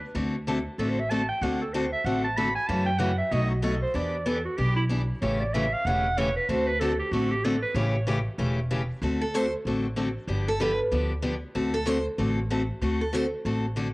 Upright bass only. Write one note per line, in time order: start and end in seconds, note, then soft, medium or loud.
0.15 0.65 D2 medium
0.78 1.29 A1 medium
1.41 1.92 D2 medium
2.04 2.55 A1 medium
2.69 3.19 F#2 medium
3.32 3.82 B1 medium
3.95 4.46 E2 medium
4.58 5.09 B1 medium
5.22 5.73 A1 medium
5.85 6.36 E1 medium
6.49 6.99 D2 medium
7.12 7.63 A1 medium
7.75 8.26 A1 loud
8.38 8.89 E1 medium
9.02 9.53 D2 medium
9.65 10.16 A1 medium
10.27 10.79 G1 medium
10.91 11.42 D2 medium
11.55 12.06 D2 medium
12.18 12.69 A1 medium
12.81 13.32 D2 medium
13.45 13.94 A1 medium